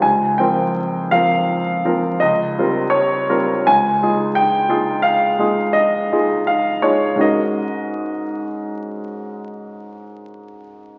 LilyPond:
\new Staff \with { instrumentName = "Grand piano" } { \time 5/4 \key des \major \tempo 4 = 83 << { aes''8 g''4 f''4. ees''4 des''4 | aes''4 g''4 f''4 ees''4 f''8 des''8 | ees''1 r4 | } \\ { des,8 <f c' f' bes'>4 <f c' f' bes'>4 <f c' f' bes'>8 des,8 <g c' f' bes'>4 <g c' f' bes'>8 | des,8 <aes ees' f' aes'>4 <aes ees' f' aes'>4 <aes ees' f' aes'>4 <aes ees' f' aes'>4 <aes ees' f' aes'>8 | <aes, aes des' ges' bes'>1~ <aes, aes des' ges' bes'>4 | } >> }